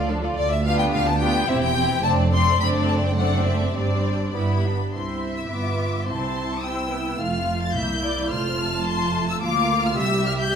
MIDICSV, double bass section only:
0, 0, Header, 1, 2, 480
1, 0, Start_track
1, 0, Key_signature, 0, "major"
1, 0, Tempo, 558659
1, 320, Time_signature, 2, 2, 24, 8
1, 2723, Tempo, 591133
1, 4163, Tempo, 567644
1, 5603, Tempo, 557621
1, 8968, End_track
2, 0, Start_track
2, 0, Title_t, "Double bass section"
2, 0, Program_c, 0, 48
2, 0, Note_on_c, 0, 38, 57
2, 302, Note_off_c, 0, 38, 0
2, 321, Note_on_c, 0, 38, 69
2, 742, Note_off_c, 0, 38, 0
2, 803, Note_on_c, 0, 38, 75
2, 1219, Note_off_c, 0, 38, 0
2, 1276, Note_on_c, 0, 28, 75
2, 1699, Note_off_c, 0, 28, 0
2, 1755, Note_on_c, 0, 29, 74
2, 2178, Note_off_c, 0, 29, 0
2, 2233, Note_on_c, 0, 30, 66
2, 3163, Note_off_c, 0, 30, 0
2, 3199, Note_on_c, 0, 31, 49
2, 3672, Note_off_c, 0, 31, 0
2, 3682, Note_on_c, 0, 31, 49
2, 3992, Note_off_c, 0, 31, 0
2, 4167, Note_on_c, 0, 36, 41
2, 4614, Note_off_c, 0, 36, 0
2, 4646, Note_on_c, 0, 31, 47
2, 5115, Note_off_c, 0, 31, 0
2, 5127, Note_on_c, 0, 36, 42
2, 6089, Note_off_c, 0, 36, 0
2, 6090, Note_on_c, 0, 29, 51
2, 6556, Note_off_c, 0, 29, 0
2, 6567, Note_on_c, 0, 36, 55
2, 7044, Note_on_c, 0, 29, 59
2, 7049, Note_off_c, 0, 36, 0
2, 8004, Note_off_c, 0, 29, 0
2, 8006, Note_on_c, 0, 38, 63
2, 8470, Note_off_c, 0, 38, 0
2, 8478, Note_on_c, 0, 36, 71
2, 8963, Note_off_c, 0, 36, 0
2, 8968, End_track
0, 0, End_of_file